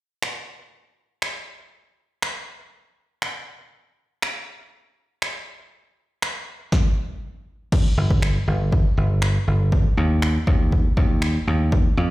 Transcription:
0.23 finger snap loud
1.22 finger snap loud
2.22 finger snap loud
3.22 finger snap loud
4.22 finger snap loud
5.22 finger snap loud
6.22 finger snap loud
6.72 kick loud
6.72 snare medium
7.72 kick loud
7.72 crash medium
7.97 8.37 G1 loud
8.10 kick medium
8.22 finger snap loud
8.47 8.87 G1 medium
8.72 kick medium
8.97 9.37 G1 loud
9.22 finger snap loud
9.47 9.87 G1 medium
9.72 kick loud
9.97 10.37 D#2 loud
10.22 finger snap loud
10.47 10.87 D#2 medium
10.47 kick medium
10.72 kick medium
10.97 11.37 D#2 loud
10.97 kick medium
11.22 finger snap loud
11.47 11.87 D#2 medium
11.72 kick loud
11.97 12.11 F2 loud

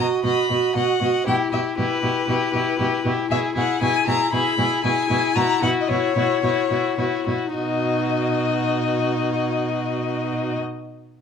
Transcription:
0.00 0.24 F#4 soft
0.00 0.24 D#5 soft
0.24 0.32 B2 soft
0.24 0.50 F#4 soft
0.24 0.50 D#5 soft
0.24 0.75 B5 medium
0.50 0.58 B2 soft
0.50 0.76 F#4 soft
0.50 0.75 D#5 soft
0.75 0.84 B2 soft
0.75 1.01 F#4 soft
0.75 1.01 D#5 soft
0.75 1.26 F#5 medium
1.01 1.09 B2 soft
1.01 1.27 F#4 soft
1.01 1.26 D#5 soft
1.27 1.35 B2 soft
1.27 1.52 E4 soft
1.27 1.52 G4 soft
1.27 1.36 G5 medium
1.52 1.61 B2 soft
1.52 1.77 E4 soft
1.52 1.76 G4 soft
1.52 1.61 E5 soft
1.77 1.86 B2 soft
1.77 2.02 E4 soft
1.77 2.02 G4 soft
1.77 3.02 B4 medium
2.02 2.11 B2 soft
2.02 2.27 E4 soft
2.02 2.27 G4 soft
2.28 2.36 B2 soft
2.28 2.53 E4 soft
2.28 2.52 G4 soft
2.53 2.62 B2 soft
2.53 2.78 E4 soft
2.53 2.78 G4 soft
2.79 2.87 B2 soft
2.79 3.04 E4 soft
2.79 3.04 G4 soft
3.04 3.13 B2 soft
3.04 3.30 E4 soft
3.04 3.29 G4 soft
3.30 3.38 B2 medium
3.30 3.55 E4 soft
3.30 3.54 G#4 soft
3.30 3.39 E5 medium
3.55 3.64 B2 soft
3.55 3.80 E4 soft
3.55 3.80 G#4 soft
3.55 3.82 F#5 medium
3.81 3.90 B2 soft
3.81 4.06 E4 soft
3.81 4.05 G#4 soft
3.81 4.07 G#5 medium
4.06 4.16 B2 soft
4.06 4.31 E4 soft
4.06 4.31 G#4 soft
4.06 4.32 A#5 medium
4.31 4.41 B2 soft
4.31 4.57 E4 soft
4.31 4.57 G#4 soft
4.31 4.83 B5 medium
4.58 4.66 B2 soft
4.58 4.83 E4 soft
4.58 4.83 G#4 soft
4.84 4.92 B2 soft
4.84 5.09 E4 soft
4.84 5.09 G#4 soft
4.84 5.37 G#5 medium
5.09 5.18 B2 soft
5.09 5.35 E4 soft
5.09 5.35 G#4 soft
5.35 5.44 B2 soft
5.35 5.62 E4 soft
5.35 5.62 F#4 soft
5.35 5.62 A#5 medium
5.62 5.70 B2 soft
5.62 5.89 E4 soft
5.62 5.89 F#4 soft
5.62 5.70 F#5 medium
5.81 5.89 D#5 soft
5.88 5.97 B2 soft
5.88 6.16 E4 soft
5.88 6.16 F#4 soft
5.88 7.25 C#5 medium
6.16 6.24 B2 soft
6.16 6.43 E4 soft
6.16 6.42 F#4 soft
6.43 6.51 B2 soft
6.43 6.70 E4 soft
6.43 6.70 F#4 soft
6.71 6.79 B2 soft
6.71 6.97 E4 soft
6.71 6.98 F#4 soft
6.98 7.06 B2 soft
6.98 7.25 E4 soft
6.98 7.26 F#4 soft
7.27 7.35 B2 soft
7.27 7.54 E4 soft
7.27 7.54 F#4 soft
7.54 10.58 B2 soft
7.54 10.58 D#4 soft
7.54 10.58 F#4 soft
7.54 10.58 D#5 soft

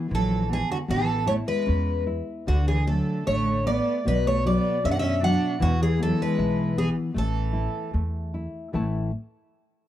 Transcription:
0.10 0.61 A#1 medium
0.10 0.48 E3 medium
0.10 0.46 F#3 medium
0.15 0.48 A4 medium
0.49 0.67 E3 medium
0.49 0.87 B3 medium
0.49 0.71 G#4 medium
0.69 0.78 D3 medium
0.69 0.77 F#4 medium
0.88 1.40 A1 medium
0.88 1.24 E3 medium
0.88 2.43 B3 medium
0.88 1.27 A4 medium
1.26 1.37 A3 medium
1.26 1.65 E4 soft
1.26 1.33 C#5 medium
1.47 2.03 G#3 medium
1.47 2.03 B4 medium
1.66 2.20 E2 medium
1.66 2.05 C#4 soft
2.07 2.45 E4 soft
2.47 2.99 D2 medium
2.47 3.26 D3 medium
2.47 2.65 D3 medium
2.47 2.66 F#4 medium
2.67 2.85 E3 medium
2.67 2.87 G#4 medium
2.87 3.24 F#3 medium
2.87 3.25 A3 soft
2.87 3.28 A4 medium
3.27 3.79 A1 medium
3.27 3.65 D3 medium
3.27 3.64 A3 medium
3.27 3.66 C#5 medium
3.66 4.05 A3 soft
3.66 4.03 B3 medium
3.66 4.07 D5 medium
4.05 4.57 B1 medium
4.05 5.57 B2 medium
4.05 4.24 F#3 medium
4.05 4.25 B4 medium
4.26 4.44 A3 medium
4.26 4.45 C#5 medium
4.45 4.83 F#3 soft
4.45 4.81 B3 medium
4.45 4.85 D5 medium
4.84 5.35 F#2 medium
4.84 4.90 C#4 medium
4.84 5.21 D4 medium
4.84 4.91 E5 loud
4.91 4.97 D4 medium
4.91 4.98 F#5 medium
4.99 5.22 C#4 medium
4.99 5.22 E5 loud
5.23 5.60 F#3 medium
5.23 5.59 D4 medium
5.23 5.63 F#5 loud
5.60 6.12 E2 medium
5.60 5.80 B2 medium
5.60 7.10 E3 medium
5.60 5.80 F#4 loud
5.81 5.99 E3 medium
5.81 6.00 G#4 medium
5.99 6.19 F#3 medium
5.99 6.37 B3 medium
5.99 6.21 A4 medium
6.21 6.74 G#3 medium
6.21 6.78 B4 medium
6.38 6.88 B1 medium
6.38 6.75 E4 medium
6.77 6.95 E3 medium
6.77 7.13 B3 medium
6.77 6.88 G#4 medium
7.14 7.66 A1 medium
7.14 7.89 E3 medium
7.14 7.92 A3 medium
7.14 7.90 A4 medium
7.53 7.91 E4 soft
7.93 8.46 E2 medium
7.93 8.32 A3 soft
8.34 8.73 E4 soft
8.73 9.10 A1 medium
8.73 9.10 A2 soft
8.73 9.10 E3 soft
8.73 9.10 A3 soft
8.73 9.10 E4 soft
8.73 9.11 C#5 soft
8.73 9.11 A5 medium

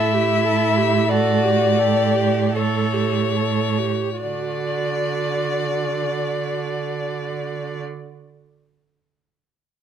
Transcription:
0.00 3.87 A2 medium
0.00 1.12 E4 medium
0.00 0.16 A4 medium
0.00 1.11 E5 medium
0.14 0.46 G4 soft
0.44 0.79 A4 soft
0.77 1.09 G4 soft
1.09 1.81 F#4 medium
1.09 1.45 A4 soft
1.09 2.58 D5 medium
1.44 1.80 G4 soft
1.79 2.56 G4 medium
1.79 2.16 A4 soft
2.15 2.52 G4 soft
2.53 2.94 A4 soft
2.53 3.37 A4 soft
2.53 4.22 C#5 medium
2.93 3.37 G4 soft
3.36 3.80 A4 soft
3.78 4.20 G4 soft
4.21 7.80 D3 soft
4.21 7.79 F#4 soft
4.21 7.79 D5 soft
4.21 7.81 D5 medium

